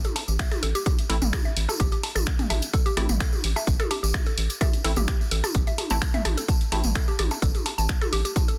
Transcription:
0.04 synth arpeggio sound A4, closed hi-hat, high tom, tambourine
0.16 open hi-hat, percussion blips
0.28 analog synth bass A1, tambourine
0.39 synth arpeggio sound E5, finger snap, kick, closed hi-hat, tambourine
0.52 closed hi-hat, high tom, tambourine, percussion blips
0.63 analog synth bass A1, synth arpeggio sound A4, open hi-hat
0.75 synth arpeggio sound G4, closed hi-hat, tambourine
0.86 synth arpeggio sound G4, kick, closed hi-hat, high tom, tambourine
0.99 closed hi-hat, tambourine
1.09 analog synth bass A1, synth stab A3 C4 E4, synth arpeggio sound A4, open hi-hat
1.22 analog synth bass A1, mid tom, tambourine
1.33 finger snap, kick, closed hi-hat, high tom, tambourine, percussion blips
1.45 synth arpeggio sound E5, tambourine
1.56 analog synth bass A1, open hi-hat
1.69 synth arpeggio sound A4, high tom, tambourine, percussion blips
1.80 analog synth bass A1, synth arpeggio sound G4, kick, closed hi-hat, tambourine
1.92 synth arpeggio sound G4, closed hi-hat, tambourine
2.03 open hi-hat, percussion blips
2.15 analog synth bass A1, synth arpeggio sound A4, high tom, tambourine, percussion blips
2.27 finger snap, kick, closed hi-hat
2.39 closed hi-hat, mid tom, tambourine
2.50 analog synth bass A1, synth arpeggio sound E5, open hi-hat, high tom, percussion blips
2.62 closed hi-hat, tambourine
2.73 synth arpeggio sound A4, kick, closed hi-hat, tambourine
2.86 synth arpeggio sound G4, closed hi-hat, tambourine
2.97 analog synth bass A1, synth stab A3 C4 E4, synth arpeggio sound G4, open hi-hat, high tom, percussion blips
3.09 analog synth bass A1, mid tom, tambourine
3.20 synth arpeggio sound A4, finger snap, kick, closed hi-hat, tambourine
3.33 high tom, tambourine
3.44 analog synth bass A1, open hi-hat
3.56 synth arpeggio sound E5, tambourine, percussion blips
3.67 analog synth bass A1, kick, closed hi-hat, tambourine
3.79 synth arpeggio sound A4, closed hi-hat, high tom, tambourine, percussion blips
3.91 synth arpeggio sound G4, open hi-hat, percussion blips
4.03 analog synth bass A1, synth arpeggio sound G4, tambourine
4.14 finger snap, kick, closed hi-hat, high tom
4.26 synth arpeggio sound A4, closed hi-hat, tambourine
4.38 analog synth bass A1, open hi-hat
4.50 closed hi-hat, tambourine
4.61 synth arpeggio sound E5, kick, closed hi-hat, high tom, tambourine, percussion blips
4.73 closed hi-hat, tambourine
4.84 analog synth bass A1, synth stab A3 C4 E4, synth arpeggio sound A4, open hi-hat
4.96 analog synth bass A1, synth arpeggio sound G4, mid tom, high tom, tambourine
5.08 synth arpeggio sound G4, finger snap, kick, closed hi-hat, tambourine
5.21 tambourine
5.31 analog synth bass A1, synth arpeggio sound A4, open hi-hat
5.44 high tom, tambourine, percussion blips
5.54 analog synth bass A1, kick, closed hi-hat, tambourine
5.67 synth arpeggio sound E5, closed hi-hat, tambourine
5.78 open hi-hat, high tom, percussion blips
5.90 analog synth bass A1, synth stab A3 C4 E4, synth arpeggio sound A5, tambourine
6.02 finger snap, kick, closed hi-hat, tambourine
6.14 synth arpeggio sound E5, closed hi-hat, mid tom, tambourine
6.25 analog synth bass A1, open hi-hat, high tom, percussion blips
6.37 synth arpeggio sound A4, closed hi-hat, tambourine
6.48 kick, closed hi-hat, tambourine
6.61 closed hi-hat, tambourine
6.72 analog synth bass A1, synth stab A3 C4 E4, synth arpeggio sound A5, open hi-hat, high tom
6.84 analog synth bass A1, mid tom, tambourine
6.95 synth arpeggio sound A4, finger snap, kick, closed hi-hat
7.08 synth arpeggio sound G4, tambourine
7.19 analog synth bass A1, synth arpeggio sound G4, open hi-hat, high tom, percussion blips
7.31 tambourine, percussion blips
7.42 analog synth bass A1, synth arpeggio sound A4, kick, closed hi-hat, tambourine
7.55 closed hi-hat, high tom, tambourine
7.66 open hi-hat, percussion blips
7.78 analog synth bass A1, synth arpeggio sound A5, tambourine
7.89 finger snap, kick, closed hi-hat, tambourine
8.01 synth arpeggio sound A4, closed hi-hat, high tom, tambourine, percussion blips
8.13 analog synth bass A1, synth arpeggio sound G4, open hi-hat
8.25 synth arpeggio sound G4, closed hi-hat, tambourine
8.36 kick, closed hi-hat, high tom, tambourine
8.48 synth arpeggio sound A4, closed hi-hat, tambourine

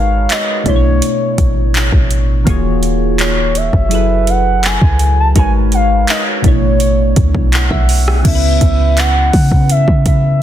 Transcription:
Already playing: 808-style bass G#1, synth keys G#3 D#4 F#4 A#4 B4 C#5, soft synth lead F5
0.30 soft synth lead D#5, clap, closed hi-hat
0.63 808-style bass B1, synth keys B2 A3 D4, soft synth lead C#5, kick, closed hi-hat
0.68 synth keys E4 C5
0.76 synth keys C#5
1.02 closed hi-hat
1.38 808-style bass A1, kick, closed hi-hat
1.75 clap, closed hi-hat
1.92 808-style bass A1, kick
2.11 closed hi-hat
2.44 808-style bass D#1, synth keys D#3 A#3 F4 F#4, kick, closed hi-hat
2.49 synth keys G#4 C#5
2.83 closed hi-hat
3.19 soft synth lead C#5, clap, closed hi-hat
3.55 soft synth lead E5, closed hi-hat
3.73 808-style bass F#1, kick
3.89 synth keys F#3 E4 G#4, closed hi-hat
3.93 synth keys A4 B4
4.27 soft synth lead F#5, closed hi-hat
4.63 soft synth lead G#5, clap, closed hi-hat
4.82 808-style bass C#2, kick
4.99 closed hi-hat
5.20 soft synth lead A5
5.35 808-style bass G#1, synth keys G#3 D#4 F#4 A#4 B4 C#5, soft synth lead G#5, kick, closed hi-hat
5.72 soft synth lead F5, closed hi-hat
6.08 soft synth lead D#5, clap, closed hi-hat
6.42 808-style bass A1, synth keys B2 A3 D4, kick, closed hi-hat
6.46 synth keys E4 C#5, soft synth lead C#5
6.80 closed hi-hat
7.16 808-style bass D2, kick, closed hi-hat
7.35 808-style bass B1, kick
7.53 synth keys F#5, clap, closed hi-hat
7.71 808-style bass B1, synth keys E5, kick
7.89 open hi-hat
8.08 cross-stick
8.23 808-style bass C#2, synth keys C#3 B3 C#4, soft synth lead E5, kick, closed hi-hat, crash
8.27 synth keys E4 A4
8.35 synth keys B4
8.61 808-style bass C#2, kick, closed hi-hat
8.97 soft synth lead F#5, clap, closed hi-hat
9.33 808-style bass C#3, kick, open hi-hat
9.52 kick
9.70 soft synth lead E5, closed hi-hat
9.88 808-style bass C#3, kick
10.06 soft synth lead E5, kick, closed hi-hat

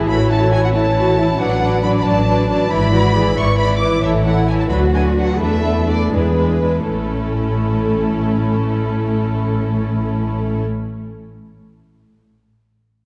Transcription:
Already playing: viola section E3 E4
0.08 double bass section A1, violin section A3 C#5 B5, cello section F#4
0.20 violin section C#4
0.30 violin section E4 A5
0.40 violin section A4
0.50 violin section E4 G#5
0.62 violin section C#4 F#5
0.72 violin section A3 A5, cello section E4
0.85 violin section C#4
0.95 violin section E4, cello section F#4
1.07 violin section A4
1.17 violin section E4, cello section E4
1.31 violin section C#4
1.39 double bass section A1, viola section F#3 D4, cello section D4, violin section B4 D5 F#5
1.61 viola section F#3 D4, violin section B4 D5
1.83 viola section F#3 D4, violin section B4 D5 B5
1.99 violin section B5
2.05 double bass section A1, viola section F#3 D4, violin section B4 D5 A5
2.27 viola section F#3 D4, violin section B4 D5
2.49 viola section F#3 D4, violin section B4 D5 A5
2.70 double bass section G#1, viola section E3 E4, cello section E4, violin section B4 D5 B5
2.92 viola section E3 E4, cello section F#4, violin section B4 D5
3.14 viola section E3 E4, cello section G#4, violin section B4 D5
3.37 double bass section G#1, viola section E3 E4, cello section E4, violin section B4 D5 C#6
3.58 viola section E3 E4, violin section B4 D5 B5
3.79 viola section E3 E4, violin section B4 D5 D6
4.02 double bass section A1, viola section E3 E4, violin section A4 C#5 E5
4.24 viola section E3 E4, violin section A4 C#5 F#5
4.47 viola section E3 E4, violin section A4 C#5 G#5
4.59 violin section A5
4.70 double bass section D2, viola section F#3 D4, violin section F#4 B4 B5, cello section F#4
4.93 viola section F#3 D4, violin section F#4 B4 G#5
5.16 viola section F#3 D4, violin section F#4 B4 F#5
5.39 double bass section E2, viola section A3 D4, violin section E4 B4 E5, cello section A4
5.62 viola section A3 D4, violin section E4 B4
5.86 viola section A3 D4, violin section E4 B4 D5
6.11 double bass section E2, viola section G#3 D4, violin section E4 B4, cello section G#4
6.36 viola section G#3 D4, violin section E4 B4
6.61 viola section G#3 D4, violin section E4 B4
6.86 double bass section A1, cello section A2, viola section A3 C#4, violin section E4 A4

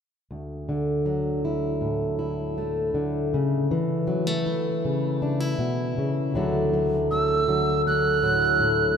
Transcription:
0.31 steel-string acoustic guitar D2
0.69 steel-string acoustic guitar D3
1.06 steel-string acoustic guitar F#3
1.45 steel-string acoustic guitar E4
1.81 steel-string acoustic guitar A2
2.19 steel-string acoustic guitar E4
2.58 steel-string acoustic guitar A3
2.94 steel-string acoustic guitar D3
3.34 steel-string acoustic guitar C#3
3.71 steel-string acoustic guitar E3
4.07 steel-string acoustic guitar F#3
4.27 steel-string acoustic guitar A3
4.46 steel-string acoustic guitar E4
4.85 steel-string acoustic guitar C#3
5.22 steel-string acoustic guitar D4
5.40 steel-string acoustic guitar E4
5.59 steel-string acoustic guitar B2
5.98 steel-string acoustic guitar C#3
6.34 steel-string acoustic guitar D2 D3 F#3 A3 E4
6.74 steel-string acoustic guitar F#3
7.11 steel-string acoustic guitar A3, tin whistle E6
7.48 steel-string acoustic guitar D3 F#3
7.86 steel-string acoustic guitar A3, tin whistle F#6
8.23 steel-string acoustic guitar A2 F#3
8.60 steel-string acoustic guitar A2

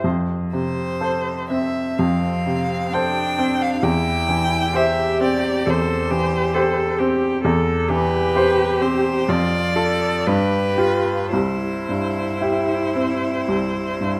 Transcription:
0.04 grand piano F2
0.53 grand piano C3, violin C5
1.01 grand piano A4 C5
1.50 grand piano C4, violin E5
1.97 grand piano F2, cello C4, violin F5
2.46 grand piano C3
2.93 cello D4, grand piano A4 C5, violin G5
3.38 grand piano C4
3.62 violin F5
3.83 grand piano E2, cello E4, violin G5
4.29 grand piano E3
4.74 grand piano G4 C5, cello G4, violin E5
5.21 grand piano C4, violin D5
5.66 grand piano E2, cello A4, violin C5
6.11 grand piano E3, cello G4
6.54 grand piano G4 C5, cello A4
6.99 grand piano C4, cello G4
7.44 grand piano E2, cello A4
7.89 grand piano E3, cello G4, violin B4
8.35 grand piano G4 C5
8.81 grand piano C4, violin C5
9.28 grand piano F2, cello F4, violin D5
9.75 grand piano F4 A4, cello A4
10.27 grand piano G2, cello G4, violin B4
10.77 grand piano F4 G4, cello F4
11.33 grand piano C2, cello E4, violin C5
11.89 grand piano G2
12.41 grand piano E4 G4
12.95 grand piano C4
13.49 grand piano C2
14.01 grand piano G2

